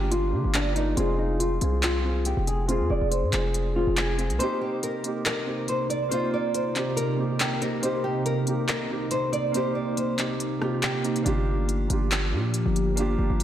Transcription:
Already playing: G1 A#3 D4 F4 G4
0.11 F4, closed hi-hat
0.30 D3 A#3 D4 F4
0.35 G4
0.44 G1
0.54 D4, clap, closed hi-hat
0.73 A#3 D4 D#4 F4, closed hi-hat
0.78 A#4
0.95 F1 G#3 C4 F4, closed hi-hat
1.00 G#4
1.19 D#4
1.40 F4, closed hi-hat
1.59 C2 G#3 C4 F4, closed hi-hat
1.64 G#4
1.83 F4, clap, closed hi-hat
2.02 G#3 C4 F4
2.07 G#4
2.25 G4, closed hi-hat
2.37 F1
2.47 G#4, closed hi-hat
2.67 G#3 C4 F4, closed hi-hat
2.72 G#4
2.80 F2
2.90 F1 D5
3.01 F1
3.11 C5, closed hi-hat
3.23 G#2
3.31 F1 G#3 C4 F4, clap, closed hi-hat
3.36 G#4
3.54 closed hi-hat
3.73 G#3 C4 F4
3.78 G#4
3.87 F1
3.97 G#4, clap, closed hi-hat
4.16 G#3 C4 F4, closed hi-hat
4.21 G#4
4.30 C2, closed hi-hat
4.38 C3 A#3 C4 D#4 C5, closed hi-hat
4.43 G4
4.61 G4
4.83 A#4, closed hi-hat
5.03 A#3 C4 D#4, closed hi-hat
5.08 G4
5.26 A#4, clap, closed hi-hat
5.44 A#3 C4 D#4
5.49 G4
5.68 C5, closed hi-hat
5.90 D5, closed hi-hat
6.09 A#3 C4 D#4 C5, closed hi-hat
6.14 F4
6.34 D5
6.54 C5, closed hi-hat
6.74 A#3 C4 D#4, clap, closed hi-hat
6.78 G4
6.97 A#4, closed hi-hat
7.16 A#3 C4 D#4
7.21 G4
7.40 G4, clap, closed hi-hat
7.59 A#3 C4 D#4 A#4, closed hi-hat
7.64 G4
7.80 A#3 C4 D#4 C5, closed hi-hat
7.85 G4
8.04 G4
8.26 A#4, closed hi-hat
8.45 A#3 C4 D#4, closed hi-hat
8.50 G4
8.69 A#4, clap, closed hi-hat
8.87 A#3 C4 D#4
8.92 G4
9.11 C5, closed hi-hat
9.33 D5, closed hi-hat
9.52 A#3 C4 D#4 C5, closed hi-hat
9.57 G4
9.75 D5
9.97 C5, closed hi-hat
10.16 A#3 C4 D#4, clap, closed hi-hat
10.21 G4
10.40 closed hi-hat
10.59 A#3 C4 D#4 F4, cross-stick
10.64 G4
10.82 G4, clap, closed hi-hat
11.01 A#3 C4 D#4, closed hi-hat
11.06 G4
11.16 closed hi-hat
11.23 G1 F3 A#3 D4 F4 G4, closed hi-hat
11.28 G4
11.69 closed hi-hat
11.88 G1 A#3 D4 F4, closed hi-hat
11.93 G4
12.12 clap, closed hi-hat
12.30 A#2 A#3 D4 F4
12.35 G4
12.54 closed hi-hat
12.66 G1
12.76 closed hi-hat
12.96 A#3 D4 F4, closed hi-hat
13.01 G4
13.19 G1
13.30 G1
13.40 closed hi-hat

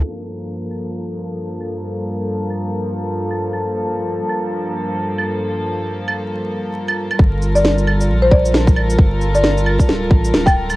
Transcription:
0.02 G2 F3 A#3 A4
0.71 claves
1.61 claves
2.50 claves
3.31 claves
3.53 claves
4.29 claves
5.18 claves
6.08 claves
6.88 claves
7.11 claves
7.19 G1 G3 F4 A4 A#4, kick
7.42 shaker
7.55 D5, shaker
7.65 snare
7.78 shaker
7.87 claves
8.01 shaker
8.09 A#1
8.22 C5
8.31 D5, kick
8.45 shaker
8.54 snare
8.67 kick, shaker
8.76 A1, claves
8.90 shaker
8.99 G1, kick
9.21 shaker
9.35 D5, shaker
9.44 snare
9.58 shaker
9.66 claves
9.79 kick, shaker
9.89 D1, snare
10.11 A1, kick
10.25 shaker
10.34 D1, snare
10.46 G5, kick, claves, shaker
10.70 claves, shaker

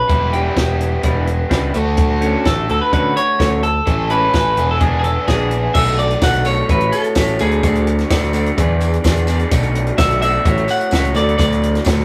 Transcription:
Already playing: B4
0.08 E1 G3 B3 E4 G4, muted clean electric guitar stroke, kick, closed hi-hat
0.32 G3 D4 E4 G4 B4, closed hi-hat
0.57 E1, muted clean electric guitar stroke, kick, snare, closed hi-hat
0.81 muted clean electric guitar stroke, closed hi-hat
1.03 E1 G3 D4 E4 B4, kick, closed hi-hat
1.27 muted clean electric guitar stroke, closed hi-hat
1.49 C#2 G3 D4 E4 B4, kick, snare, closed hi-hat
1.74 D2 A3 D4 F#4, muted clean electric guitar stroke, closed hi-hat
1.97 muted clean electric guitar stroke, kick, closed hi-hat
2.21 D3 A3 C#4 F#4, closed hi-hat
2.45 A1 A4, muted clean electric guitar stroke, kick, snare, closed hi-hat
2.69 D2 A4, muted clean electric guitar stroke, closed hi-hat
2.81 B4
2.92 D3 A3 C#4 F#4 B4, kick, closed hi-hat
3.16 C#5, muted clean electric guitar stroke, closed hi-hat
3.38 D2 D3 A3 C#4 F#4, kick, snare, closed hi-hat
3.63 A4, muted clean electric guitar stroke, closed hi-hat
3.86 A1 E3 A3 C#4 A4, muted clean electric guitar stroke, kick, closed hi-hat
4.10 E3 G#3 C#4 E4 B4, closed hi-hat
4.33 A1 B4, muted clean electric guitar stroke, kick, snare, closed hi-hat
4.57 E1 E3 B3 D4 G#4, muted clean electric guitar stroke, closed hi-hat
4.71 A4
4.80 E3 B3 D4 G#4, kick, closed hi-hat
4.99 G#4
5.03 A4, muted clean electric guitar stroke, closed hi-hat
5.27 A#1 E3 B3 D4 G#4, kick, snare, closed hi-hat
5.51 muted clean electric guitar stroke, closed hi-hat
5.74 B1 B2 F#3 A3 D4 A4 E5, kick, crash, tambourine
5.86 closed hi-hat
5.99 D5, closed hi-hat
6.11 closed hi-hat
6.21 B1 B2 F#3 A3 D4 A4 F#5, kick, snare, closed hi-hat, tambourine
6.34 snare, closed hi-hat
6.45 B2 F#3 A3 D4 A4 C#5, closed hi-hat, tambourine
6.68 A1 A3 E4 F#4 B4 C#5, kick, closed hi-hat, tambourine
6.81 closed hi-hat
6.92 A4, closed hi-hat, tambourine
7.04 closed hi-hat
7.15 A1 A3 E4 F#4 C#5, kick, snare, closed hi-hat, tambourine
7.28 closed hi-hat
7.39 D2 D3 F#3 A3 D4 F#4 G#4 D5, closed hi-hat, tambourine
7.51 closed hi-hat
7.63 D2 D3 F#3 A3 D4 F#4 D5, kick, closed hi-hat, tambourine
7.75 closed hi-hat
7.87 closed hi-hat
7.99 snare, closed hi-hat
8.08 D2 D3 F#3 A3 D4 F#4 D5, kick, snare, closed hi-hat, tambourine
8.23 snare
8.32 D3 F#3 A3 D4 F#4 D5, closed hi-hat, tambourine
8.46 closed hi-hat
8.56 E2 E3 B3 D4 G#4 D5, kick, closed hi-hat, tambourine
8.81 closed hi-hat, tambourine
8.94 closed hi-hat
9.03 E2 E3 B3 D4 G#4 D5, kick, snare, closed hi-hat, tambourine
9.16 closed hi-hat
9.27 E3 B3 D4 G#4 D5, closed hi-hat, tambourine
9.39 closed hi-hat
9.50 B1 B2 F#3 A3 D4 F#4 D5, kick, closed hi-hat, tambourine
9.63 closed hi-hat
9.75 closed hi-hat
9.87 closed hi-hat
9.97 B1 B2 F#3 A3 D4 F#4 D5 E5, kick, snare, closed hi-hat, tambourine
10.10 snare, closed hi-hat
10.20 B2 F#3 A3 D4 F#4 D5 E5, closed hi-hat, tambourine
10.45 A1 A3 E4 F#4 C#5, kick, closed hi-hat, tambourine
10.58 closed hi-hat
10.68 F#5, closed hi-hat, tambourine
10.81 closed hi-hat
10.91 C#2 A3 E4 F#4 C#5, kick, snare, closed hi-hat, tambourine
11.05 closed hi-hat
11.13 D2 D3 F#3 A3 D4 F#4 D5, closed hi-hat, tambourine
11.29 closed hi-hat
11.36 D2 D3 F#3 A3 D4 F#4 D5, kick, closed hi-hat, tambourine
11.52 closed hi-hat
11.62 closed hi-hat, tambourine
11.75 snare, closed hi-hat
11.84 D2 D3 F#3 A3 D4 F#4, kick, snare, closed hi-hat, tambourine
12.00 snare

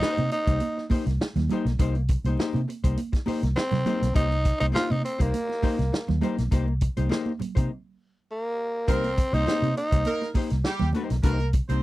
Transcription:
Already playing: D#4
0.01 A#3 D#4 G4 C5, muted fingered electric bass stroke, snare, muted conga
0.18 C3, closed hi-hat, muted conga, high conga
0.31 D#4, muted hollow-body jazz guitar stroke, closed hi-hat
0.47 C2 A#3 D#4 G4 C5, kick, closed hi-hat
0.60 muted hollow-body jazz guitar stroke, closed hi-hat, muted conga, high conga
0.77 muted hollow-body jazz guitar stroke, snare
0.90 A#3 D#4 G4 C5, muted fingered electric bass stroke, kick, open hi-hat, high conga
1.06 C2, muted hollow-body jazz guitar stroke, snare, closed hi-hat
1.20 muted fingered electric bass stroke, muted hollow-body jazz guitar stroke, snare
1.36 D#2, muted hollow-body jazz guitar stroke, snare, closed hi-hat, low conga
1.49 A#3 D#4 G4 C5, closed hi-hat, high conga, low conga
1.65 B1, muted hollow-body jazz guitar stroke, snare, closed hi-hat
1.79 C2 A#3 D#4 G4 C5, kick, closed hi-hat, muted conga
1.95 muted hollow-body jazz guitar stroke, closed hi-hat
2.08 muted hollow-body jazz guitar stroke, kick, closed hi-hat
2.25 C2 A#3 D#4 G4 C5, closed hi-hat, high conga
2.37 A#3 D#4 G4 C5, snare, muted conga
2.53 C3, closed hi-hat, muted conga, high conga
2.68 muted hollow-body jazz guitar stroke, closed hi-hat
2.84 C2 A#3 D#4 G4 C5, kick, closed hi-hat
2.97 closed hi-hat, muted conga, high conga
3.12 muted hollow-body jazz guitar stroke, kick, snare, closed hi-hat, muted conga
3.26 A#3 D#4 G4 C5, muted fingered electric bass stroke, open hi-hat, high conga
3.43 C2, muted hollow-body jazz guitar stroke, snare, closed hi-hat
3.56 C4, muted hollow-body jazz guitar stroke, snare
3.72 C3, muted hollow-body jazz guitar stroke, snare, closed hi-hat, muted conga, low conga
3.86 A#3 D#4 G4 C5, closed hi-hat, high conga, low conga
4.02 B1, muted hollow-body jazz guitar stroke, snare, closed hi-hat
4.14 C2 A#3 D#4 G4 C5, kick, closed hi-hat
4.30 muted hollow-body jazz guitar stroke, closed hi-hat, muted conga
4.43 muted hollow-body jazz guitar stroke, kick, closed hi-hat
4.59 C2 A#3 D#4 G4 C5, closed hi-hat, high conga
4.72 A#3 D#4 F4 G4 C5, snare
4.90 C3 D#4, closed hi-hat, muted conga, high conga
5.02 C4, muted hollow-body jazz guitar stroke, closed hi-hat
5.19 C2 A#3 D#4 G4 C5, kick, closed hi-hat
5.34 closed hi-hat, muted conga, high conga
5.48 muted hollow-body jazz guitar stroke, snare, muted conga
5.63 A#3 D#4 G4 C5, muted fingered electric bass stroke, kick, open hi-hat, high conga
5.78 C2, muted hollow-body jazz guitar stroke, snare, closed hi-hat
5.92 muted hollow-body jazz guitar stroke, snare, muted conga
6.08 D#2, muted hollow-body jazz guitar stroke, snare, muted conga, low conga
6.21 A#3 D#4 G4 C5, closed hi-hat, high conga, low conga
6.37 B1, muted hollow-body jazz guitar stroke, snare, closed hi-hat
6.51 C2 A#3 D#4 G4 C5, kick, closed hi-hat
6.68 muted hollow-body jazz guitar stroke, muted conga
6.81 muted hollow-body jazz guitar stroke, kick, closed hi-hat
6.97 C2 A#3 D#4 G4 C5, closed hi-hat, high conga
7.09 A#3 D#4 G4 C5, snare, muted conga
7.26 muted conga, high conga
7.39 muted hollow-body jazz guitar stroke, muted fingered electric bass stroke, closed hi-hat, low conga
7.55 C3 A#3 D#4 G4 C5, kick, closed hi-hat
8.31 A#3
8.87 C2 A#3 C4 D#4 G4 A#4 C5, kick, closed hi-hat
9.04 muted hollow-body jazz guitar stroke, closed hi-hat, muted conga
9.17 muted hollow-body jazz guitar stroke, kick, closed hi-hat
9.32 C2 A#3 C4 D#4 G4 C5, closed hi-hat, high conga
9.46 A#3 D#4 G4 C5, muted fingered electric bass stroke, snare, muted conga
9.62 C3, closed hi-hat, high conga
9.75 D#4, muted hollow-body jazz guitar stroke, closed hi-hat
9.91 C2 A#3 D#4 G4 C5, kick, closed hi-hat
10.05 A#3 A#4, closed hi-hat, muted conga, high conga
10.22 muted hollow-body jazz guitar stroke, snare, muted conga
10.34 A#3 D#4 G4 C5, muted fingered electric bass stroke, kick, open hi-hat, high conga
10.50 C2, muted hollow-body jazz guitar stroke, snare, closed hi-hat
10.64 G3 G4, snare
10.79 D#2, muted hollow-body jazz guitar stroke, snare, muted conga, low conga
10.93 A#3 D#4 G4 C5, closed hi-hat, high conga, low conga
11.10 B1, muted hollow-body jazz guitar stroke, snare, closed hi-hat
11.23 C2 A#3 D#4 G4 A#4 C5, kick, closed hi-hat, muted conga
11.39 muted hollow-body jazz guitar stroke, closed hi-hat, muted conga
11.53 muted hollow-body jazz guitar stroke, kick, closed hi-hat
11.68 C2 A#3 C4 D#4 G4 C5, closed hi-hat, high conga

